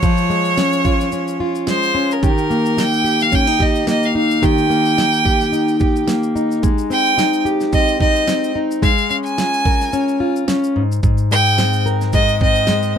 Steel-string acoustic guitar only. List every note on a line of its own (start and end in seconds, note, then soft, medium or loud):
0.00 2.22 F3 medium
0.00 0.29 G#3 medium
0.00 0.84 F4 medium
0.30 1.66 G#3 medium
0.58 1.11 C#4 medium
0.85 1.39 F4 medium
1.13 1.93 C#4 medium
1.40 2.23 F4 medium
1.67 2.29 G#3 medium
1.95 2.28 C#4 medium
2.23 4.42 D#3 medium
2.23 3.04 G4 medium
2.50 3.86 A#3 medium
2.77 3.32 D#4 medium
3.04 3.59 G4 medium
3.32 3.47 C#4 medium
3.47 4.14 D#4 medium
3.59 4.42 G4 medium
3.87 4.69 A#3 medium
4.15 4.97 D#4 medium
4.42 6.62 D#3 medium
4.42 5.25 G4 medium
4.70 6.06 A#3 medium
4.98 5.52 D#4 medium
5.25 5.80 G4 medium
5.52 6.35 D#4 medium
5.80 7.45 G4 medium
6.08 6.69 A#3 medium
6.36 7.17 D#4 medium
6.63 8.81 G#3 medium
6.90 7.71 C4 medium
7.18 7.99 D#4 medium
7.45 8.89 G4 medium
7.72 8.26 C4 medium
8.00 8.54 D#4 medium
8.28 8.89 C4 medium
8.55 8.89 D#4 medium
8.82 10.81 G#3 medium
9.10 9.92 C#4 medium
9.38 10.19 F4 medium
9.66 11.06 A#4 medium
9.93 10.47 C#4 medium
10.20 10.81 F4 medium
10.48 10.82 C#4 medium
10.76 11.02 G#2 medium
11.03 12.98 G#2 medium
11.31 12.14 G#3 medium
11.59 12.40 C4 medium
11.86 12.98 A#4 medium
12.14 12.68 G#3 medium
12.41 12.95 C4 medium
12.68 12.98 G#3 medium